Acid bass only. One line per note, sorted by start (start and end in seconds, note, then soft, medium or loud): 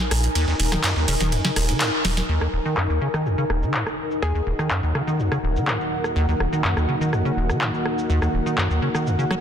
0.35 0.46 D#2 loud
0.48 0.54 D#2 medium
0.59 0.66 D#1 medium
0.72 0.82 D#3 medium
0.84 0.94 F#2 medium
0.96 1.06 D#2 medium
1.08 1.15 C#3 medium
1.20 1.34 D#3 medium
1.32 1.42 F2 loud
1.45 1.51 C#3 medium
1.56 1.70 D#1 medium
1.69 1.82 D#3 medium
1.81 1.91 G#2 medium
2.29 2.39 D#2 loud
2.41 2.48 D#2 medium
2.53 2.60 D#1 medium
2.65 2.75 D#3 medium
2.77 2.88 F#2 medium
2.90 2.99 D#2 medium
3.01 3.08 C#3 medium
3.14 3.27 D#3 medium
3.26 3.36 F2 loud
3.38 3.45 C#3 medium
3.50 3.64 D#1 medium
3.62 3.76 D#3 medium
3.74 3.84 G#2 medium
4.22 4.33 D#2 loud
4.35 4.41 D#2 medium
4.47 4.53 D#1 medium
4.59 4.69 D#3 medium
4.71 4.81 F#2 medium
4.83 4.93 D#2 medium
4.95 5.02 C#3 medium
5.07 5.21 D#3 medium
5.19 5.29 F2 loud
5.32 5.38 C#3 medium
5.43 5.57 D#1 medium
5.56 5.69 D#3 medium
5.67 5.78 G#2 medium
6.16 6.26 D#2 loud
6.28 6.35 D#2 medium
6.40 6.47 D#1 medium
6.53 6.62 D#3 medium
6.64 6.75 F#2 medium
6.77 6.87 D#2 medium
6.89 6.95 C#3 medium
7.01 7.14 D#3 medium
7.13 7.23 F2 loud
7.25 7.32 C#3 medium
7.37 7.51 D#1 medium
7.49 7.63 D#3 medium
7.61 7.71 G#2 medium
8.10 8.20 D#2 loud
8.22 8.28 D#2 medium
8.34 8.41 D#1 medium
8.46 8.56 D#3 medium
8.58 8.68 F#2 medium
8.70 8.80 D#2 medium
8.82 8.89 C#3 medium
8.95 9.08 D#3 medium
9.06 9.17 F2 loud
9.19 9.25 C#3 medium
9.31 9.35 F#3 loud